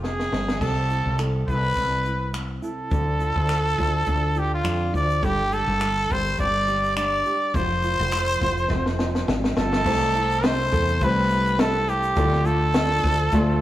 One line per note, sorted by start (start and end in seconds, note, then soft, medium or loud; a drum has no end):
0.00 0.28 F1 medium
0.00 0.61 F3 medium
0.00 1.76 C4 medium
0.00 0.67 G#4 medium
0.00 0.63 G#4 medium
0.00 0.31 C5 medium
0.00 snare soft
0.20 snare soft
0.32 0.59 G1 medium
0.32 0.61 C5 medium
0.32 snare medium
0.48 snare medium
0.61 1.02 C2 medium
0.61 2.92 C3 medium
0.61 1.19 A4 medium
0.61 kick loud
0.61 crash medium
0.90 1.47 E4 medium
0.90 shaker soft
1.06 1.44 C2 medium
1.19 2.91 A4 medium
1.19 finger snap loud
1.19 shaker medium
1.48 1.74 C2 medium
1.48 2.04 E4 medium
1.48 2.30 B4 loud
1.48 kick medium
1.48 shaker soft
1.76 2.59 C2 medium
1.76 2.32 C4 medium
1.76 kick medium
1.76 shaker medium
2.05 2.61 E4 medium
2.05 shaker soft
2.33 2.98 C4 medium
2.33 finger snap loud
2.33 shaker medium
2.62 2.98 E4 medium
2.62 4.40 A4 medium
2.62 shaker soft
2.91 3.33 D2 medium
2.91 6.41 D3 medium
2.91 3.48 A4 medium
2.91 kick loud
2.91 shaker medium
3.19 3.76 F4 medium
3.19 shaker soft
3.36 3.75 D2 medium
3.48 5.22 A4 medium
3.48 finger snap loud
3.48 shaker medium
3.78 4.05 D2 medium
3.78 4.34 F4 medium
3.78 kick medium
3.78 shaker soft
4.06 4.61 D2 medium
4.06 4.64 D4 medium
4.06 kick medium
4.06 shaker medium
4.35 4.93 F4 medium
4.35 4.53 G4 medium
4.35 shaker soft
4.54 4.92 F4 medium
4.64 4.91 F2 medium
4.64 6.39 D4 medium
4.64 finger snap loud
4.64 shaker medium
4.94 5.21 D2 medium
4.94 5.29 F4 medium
4.94 5.26 D5 medium
4.94 shaker soft
5.10 shaker soft
5.22 5.64 G1 medium
5.22 7.54 G3 medium
5.22 5.55 G4 medium
5.22 5.79 A4 medium
5.22 kick loud
5.22 shaker medium
5.51 6.08 G4 medium
5.51 6.14 A4 medium
5.51 shaker soft
5.67 6.06 G1 medium
5.80 7.54 A4 medium
5.80 finger snap loud
5.80 shaker medium
6.09 6.37 G1 medium
6.09 6.67 G4 medium
6.09 6.39 C5 loud
6.09 kick medium
6.09 shaker medium
6.25 shaker soft
6.38 7.22 G1 medium
6.38 6.95 D4 medium
6.38 6.93 D5 medium
6.38 kick medium
6.38 shaker medium
6.67 7.25 G4 medium
6.67 shaker soft
6.84 shaker medium
6.97 7.61 D4 medium
6.97 7.57 D5 medium
6.97 finger snap loud
6.97 shaker medium
7.26 7.61 G4 medium
7.26 shaker soft
7.54 7.96 F1 medium
7.54 9.86 F3 medium
7.54 9.28 C5 loud
7.54 8.12 C5 medium
7.54 kick loud
7.54 shaker medium
7.82 8.40 F4 medium
7.82 shaker soft
7.99 8.38 F1 loud
8.12 9.86 C5 medium
8.12 finger snap loud
8.12 shaker medium
8.41 8.68 F1 medium
8.41 8.98 F4 medium
8.41 kick medium
8.41 shaker medium
8.57 shaker soft
8.70 9.24 F1 loud
8.70 9.27 C4 medium
8.70 kick medium
8.70 snare medium
8.86 snare medium
8.99 9.56 F4 medium
8.99 snare medium
9.15 snare medium
9.28 9.55 G#1 loud
9.28 10.43 C4 medium
9.28 snare medium
9.44 snare medium
9.57 9.84 G1 medium
9.57 9.92 F4 medium
9.57 10.46 A4 loud
9.57 snare medium
9.73 snare medium
9.85 10.68 C2 medium
9.85 12.17 C3 medium
9.85 10.62 A3 medium
9.85 10.63 E4 medium
9.85 10.72 A4 medium
9.85 10.63 C5 medium
9.85 kick loud
9.85 crash loud
10.14 11.29 E4 medium
10.14 shaker soft
10.31 shaker soft
10.43 12.23 C4 medium
10.43 11.05 C5 loud
10.43 snare loud
10.43 shaker medium
10.72 10.99 E2 medium
10.72 11.58 A4 medium
10.72 kick medium
10.72 shaker medium
10.88 shaker soft
11.01 12.13 C2 medium
11.01 12.23 G3 medium
11.01 11.78 A3 medium
11.01 11.79 C4 medium
11.01 11.79 E4 medium
11.01 11.62 B4 loud
11.01 kick medium
11.01 shaker medium
11.29 11.86 E4 medium
11.29 shaker soft
11.46 shaker soft
11.59 12.17 A4 medium
11.59 11.91 A4 medium
11.59 snare loud
11.59 shaker medium
11.88 12.23 E4 medium
11.88 12.47 G4 medium
11.88 shaker medium
12.03 shaker medium
12.16 12.99 D2 loud
12.16 13.61 D3 medium
12.16 12.93 A3 medium
12.16 12.94 F4 medium
12.16 13.04 A4 medium
12.16 12.94 D5 medium
12.16 kick loud
12.16 shaker medium
12.33 snare soft
12.45 13.60 F4 medium
12.45 13.61 A4 loud
12.45 shaker soft
12.74 13.61 D4 medium
12.74 snare loud
12.74 shaker medium
13.04 13.30 D2 loud
13.04 13.61 A4 medium
13.04 kick medium
13.04 shaker soft
13.32 13.61 D2 medium
13.32 13.61 A3 medium
13.32 13.61 F4 medium
13.32 13.61 D5 medium
13.32 kick loud
13.32 shaker medium